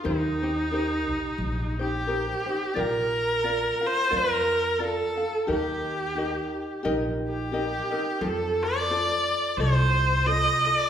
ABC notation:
X:1
M:4/4
L:1/8
Q:"Swing" 1/4=88
K:Eb
V:1 name="Ukulele"
[EGBc] [EGc] [EGBc]3 [EGc] [EGBc] [EGc] | [K:Bb] [FBdf]2 [FBdf] [FBf] [FBdf]2 [Fdf] [Ff] | [EGBe]2 [EGBe]2 [EGBe]2 [EGBe] [EBe] | [FAc]2 [FAc]2 [FAce]2 [FAce] [FA] |]
V:2 name="Viola"
E4- E G3 | [K:Bb] B3 c B2 A2 | G4 z G3 | A d3 c2 e d |]
V:3 name="Upright bass" clef=bass
E,,3 B,,, B,,,4 | [K:Bb] B,,,4 F,,4 | E,,4 B,,,4 | F,,4 C,,4 |]